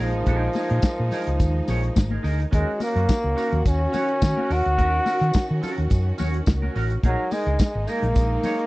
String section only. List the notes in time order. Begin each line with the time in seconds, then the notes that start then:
Already playing: G#3 A#3 D#4
2.52 D#3 C#4 F#4
7.04 G#3 A#3 D#4